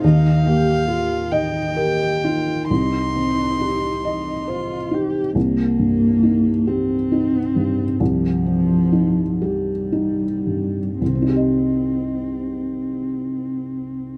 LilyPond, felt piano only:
\new Staff \with { instrumentName = "Felt piano" } { \time 6/8 \key c \minor \tempo 4. = 44 ees,8 bes8 g'8 ees''8 bes'8 ees'8 | c,8 c'8 g'8 ees''8 c''8 ees'8 | c,8 g,8 ees'8 g'8 ees'8 g,8 | c,8 c'8 ees'8 g'8 ees'8 g,8 |
<c, c c' ees' g' ees''>2. | }